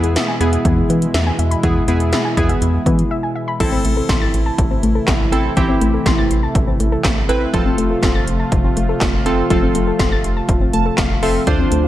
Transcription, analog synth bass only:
0.00 0.17 E2 loud
0.41 0.58 E2 loud
0.65 0.82 E2 loud
0.90 1.07 E3 medium
1.14 1.31 E2 loud
1.39 1.56 E2 loud
1.64 1.81 E2 loud
1.88 2.14 E2 loud
2.37 2.54 E2 loud
2.62 2.79 E2 loud
2.86 3.03 E3 loud
3.60 3.77 A1 loud
3.85 4.02 A1 loud
4.09 4.26 A1 loud
4.34 4.51 A1 loud
4.58 4.76 A1 loud
4.83 5.00 A1 loud
5.08 5.25 A1 loud
5.32 5.49 A1 loud
5.57 5.74 A1 loud
5.81 5.99 A1 loud
6.06 6.23 A1 loud
6.31 6.48 A1 loud
6.55 6.72 A1 loud
6.80 6.97 A1 loud
7.05 7.22 A1 loud
7.29 7.46 A1 loud
7.54 7.71 F1 loud
7.78 7.95 F1 loud
8.03 8.20 F1 loud
8.27 8.45 F1 loud
8.52 8.69 F1 loud
8.77 8.94 F1 loud
9.01 9.18 F1 loud
9.26 9.43 F1 loud
9.50 9.68 F1 loud
9.75 9.92 F1 loud
9.99 10.17 F1 loud
10.24 10.41 F1 loud
10.49 10.66 F1 loud
10.73 10.91 F1 loud
10.98 11.15 F1 loud
11.23 11.40 F1 loud
11.47 11.64 D2 loud
11.72 11.88 D2 loud

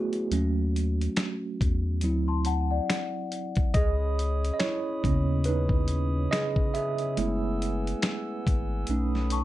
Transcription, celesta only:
2.28 2.45 A5 medium
2.28 2.45 C6 medium
2.46 2.69 F#5 medium
2.46 2.69 A5 medium
2.71 3.71 D5 medium
2.71 3.70 F#5 medium
9.32 9.44 A5 medium
9.32 9.44 C#6 medium

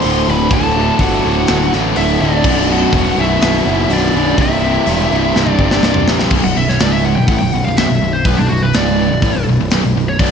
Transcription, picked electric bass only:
0.04 0.23 D1 medium
0.28 0.47 D1 medium
0.51 0.90 D1 loud
1.00 1.19 G1 medium
1.25 1.44 D1 medium
1.50 1.69 D1 medium
1.74 1.93 A1 medium
1.98 2.17 D1 medium
2.21 2.40 D1 medium
2.45 2.84 B0 loud
2.93 3.13 E1 loud
3.18 3.37 B0 medium
3.42 3.61 B0 medium
3.66 3.85 F#1 medium
3.90 4.10 B0 medium
4.14 4.34 B0 medium
4.38 4.77 C1 loud
4.87 5.07 E1 medium
5.11 5.31 C1 medium
5.34 5.54 C1 loud
5.59 5.79 G1 medium
5.83 6.03 C1 medium
6.08 6.28 A#1 medium
6.31 6.43 B0 loud
6.44 6.56 B0 medium
6.57 6.68 B0 medium
6.68 6.80 B0 medium
6.81 7.15 C#1 medium
7.18 7.28 B0 medium
7.28 7.40 A1 medium
7.42 7.52 B0 medium
7.52 7.64 B0 medium
7.66 7.76 B0 medium
7.77 7.89 B0 loud
7.89 8.00 B0 medium
8.01 8.24 B0 medium
8.26 8.37 B0 loud
8.39 8.50 B0 medium
8.51 8.62 B0 medium
8.62 8.74 B0 medium
8.75 9.09 C#1 loud
9.12 9.22 B0 medium
9.23 9.34 A1 medium
9.35 9.46 B0 medium
9.48 9.59 B0 medium
9.60 9.71 B0 medium
9.72 9.83 B0 medium
9.83 9.95 B0 medium
9.95 10.18 B0 medium
10.20 10.30 B0 loud

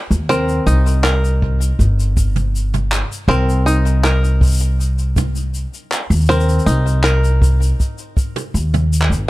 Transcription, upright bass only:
0.11 0.58 D#2 medium
0.66 1.70 C2 medium
1.79 3.02 G1 medium
3.28 5.64 C2 medium
6.10 6.58 D#2 medium
6.66 7.70 C2 medium
8.54 9.11 D#2 medium
9.10 9.23 G1 medium

